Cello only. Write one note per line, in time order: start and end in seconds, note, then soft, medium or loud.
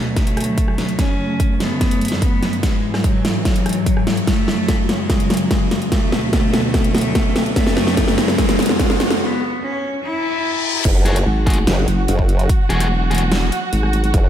0.17 0.91 A3 medium
0.99 1.52 C#4 loud
1.60 2.14 B3 medium
2.22 2.54 B3 medium
2.63 2.95 G#3 medium
3.04 3.36 F#3 medium
3.45 4.19 F#3 medium
4.28 4.81 A3 loud
4.89 5.43 G#3 loud
5.51 5.83 G#3 medium
5.92 6.24 A3 medium
6.33 6.65 A3 medium
6.74 7.48 A3 loud
7.56 8.10 A3 loud
8.18 8.71 G#3 loud
8.80 9.12 G#3 medium
9.21 9.53 B3 medium
9.62 9.94 C#4 medium
10.03 10.77 E4 loud